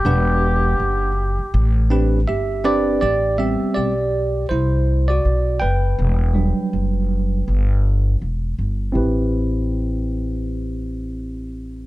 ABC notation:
X:1
M:4/4
L:1/16
Q:"Swing 16ths" 1/4=81
K:Ador
V:1 name="Muted trumpet"
G8- G2 z6 | z16 | z16 | z16 |]
V:2 name="Tine electric piano"
[DGBf]6 z4 [CDGB]2 [Ge]2 [CDGBd]2 | [Gd]2 [Ge]2 [Gd]4 [Ec]3 [Fd]3 [Bg]2- | [Bg]12 z4 | [CEGB]16 |]
V:3 name="Tine electric piano"
z16 | z2 [G,B,C]2 z12 | z2 [F,G,D]6 z8 | z16 |]
V:4 name="Upright bass" clef=bass
E,,,4 F,,,3 z A,,,4 G,,,4 | A,,,3 z B,,,4 C,,4 B,,,2 F,,,2 | E,,,3 z F,,,4 G,,,4 E,,,2 G,,,2 | A,,,16 |]